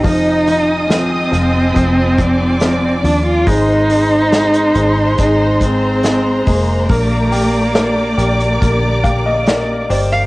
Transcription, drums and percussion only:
0.04 kick, hi-hat pedal, open hi-hat
0.47 hi-hat pedal, open hi-hat
0.90 snare, hi-hat pedal, open hi-hat
1.33 hi-hat pedal, open hi-hat
1.76 kick, hi-hat pedal, open hi-hat
2.18 kick, hi-hat pedal, open hi-hat
2.60 snare, hi-hat pedal, open hi-hat
3.04 hi-hat pedal, open hi-hat
3.47 kick, hi-hat pedal, open hi-hat
3.90 hi-hat pedal, open hi-hat
4.12 open hi-hat
4.32 snare, hi-hat pedal, open hi-hat
4.53 hi-hat pedal
4.75 hi-hat pedal, open hi-hat
5.18 kick, hi-hat pedal, open hi-hat
5.60 kick, hi-hat pedal, open hi-hat
6.03 snare, hi-hat pedal, open hi-hat
6.46 kick, hi-hat pedal, open hi-hat
6.89 kick, hi-hat pedal, open hi-hat
7.32 hi-hat pedal, open hi-hat
7.75 snare, hi-hat pedal, open hi-hat
7.97 open hi-hat
8.18 hi-hat pedal, open hi-hat
8.40 hi-hat pedal
8.62 kick, hi-hat pedal, open hi-hat
9.04 kick, hi-hat pedal, open hi-hat
9.46 snare, hi-hat pedal, open hi-hat
9.90 hi-hat pedal, open hi-hat

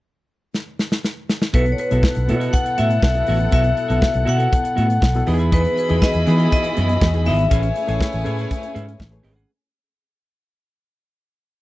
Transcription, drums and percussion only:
0.54 snare
0.79 snare
0.92 snare
1.04 snare
1.29 snare
1.42 snare
1.54 kick, closed hi-hat
1.66 closed hi-hat
1.78 closed hi-hat
1.91 closed hi-hat
2.03 kick, snare
2.15 closed hi-hat
2.29 closed hi-hat
2.41 closed hi-hat
2.54 kick, closed hi-hat
2.66 closed hi-hat
2.78 closed hi-hat
2.91 closed hi-hat
3.02 kick, snare
3.14 closed hi-hat
3.26 open hi-hat
3.40 closed hi-hat
3.52 kick, closed hi-hat
3.64 closed hi-hat
3.77 closed hi-hat
3.90 closed hi-hat
4.02 kick, snare
4.14 closed hi-hat
4.27 closed hi-hat
4.40 closed hi-hat
4.53 kick, closed hi-hat
4.65 closed hi-hat
4.78 closed hi-hat
4.90 closed hi-hat
5.02 kick, snare
5.14 closed hi-hat
5.27 open hi-hat
5.40 closed hi-hat
5.52 kick, closed hi-hat
5.65 closed hi-hat
5.77 closed hi-hat
5.90 closed hi-hat
6.02 kick, snare
6.13 closed hi-hat
6.27 snare, closed hi-hat
6.40 closed hi-hat
6.52 kick, closed hi-hat
6.64 closed hi-hat
6.77 closed hi-hat
6.89 closed hi-hat
7.01 kick, snare
7.14 closed hi-hat
7.26 open hi-hat
7.39 closed hi-hat
7.51 kick, closed hi-hat
7.63 closed hi-hat
7.76 closed hi-hat
7.89 closed hi-hat
8.01 kick, snare
8.13 closed hi-hat
8.26 closed hi-hat
8.39 closed hi-hat
8.51 kick, closed hi-hat
8.63 closed hi-hat
8.76 closed hi-hat
8.89 closed hi-hat
9.00 kick, snare
9.12 closed hi-hat
9.24 open hi-hat
9.38 closed hi-hat

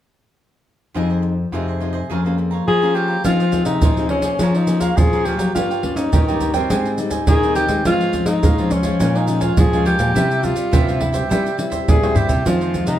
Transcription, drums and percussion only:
3.25 pandeiro, maracas, surdo
3.40 pandeiro, maracas
3.52 pandeiro, maracas, surdo
3.65 pandeiro, maracas
3.82 pandeiro, maracas, surdo
3.97 pandeiro, maracas
4.09 pandeiro
4.22 pandeiro, maracas, surdo
4.39 pandeiro, maracas, surdo
4.55 pandeiro, maracas
4.67 pandeiro, maracas
4.81 pandeiro, maracas, surdo
4.98 pandeiro, maracas, surdo
5.13 pandeiro, maracas
5.25 pandeiro
5.39 pandeiro, maracas, surdo
5.56 pandeiro, maracas, surdo
5.71 pandeiro, maracas
5.83 pandeiro, surdo
5.97 pandeiro, maracas
6.13 pandeiro, maracas, surdo
6.28 pandeiro, maracas
6.41 pandeiro, maracas, surdo
6.54 pandeiro, maracas, surdo
6.70 pandeiro, maracas, surdo
6.85 pandeiro, maracas
6.98 pandeiro, maracas
7.11 pandeiro, maracas, surdo
7.27 pandeiro, maracas, surdo
7.43 pandeiro, maracas
7.55 pandeiro, maracas
7.68 pandeiro, maracas, surdo
7.85 pandeiro, maracas, surdo
8.01 pandeiro, maracas
8.13 pandeiro, maracas, surdo
8.26 pandeiro, maracas
8.43 pandeiro, maracas, surdo
8.58 pandeiro, maracas
8.71 pandeiro, maracas, surdo
8.83 pandeiro, maracas, surdo
9.00 pandeiro, maracas, surdo
9.16 pandeiro, maracas
9.28 pandeiro, maracas
9.41 pandeiro, maracas, surdo
9.57 pandeiro, maracas, surdo
9.73 pandeiro, maracas
9.86 pandeiro
9.99 pandeiro, maracas, surdo
10.16 pandeiro, maracas, surdo
10.31 pandeiro, maracas
10.43 pandeiro, maracas, surdo
10.56 pandeiro, maracas
10.73 pandeiro, maracas, surdo
10.89 pandeiro, maracas
11.01 pandeiro, surdo
11.14 pandeiro, maracas, surdo
11.31 pandeiro, maracas, surdo
11.46 pandeiro, maracas
11.59 pandeiro, maracas
11.72 pandeiro, maracas, surdo
11.88 pandeiro, maracas, surdo
12.04 pandeiro, tamborim, maracas
12.16 surdo, pandeiro, maracas
12.29 pandeiro, maracas, surdo
12.46 pandeiro, maracas, surdo
12.61 pandeiro, maracas
12.74 pandeiro, maracas, surdo
12.87 pandeiro, maracas

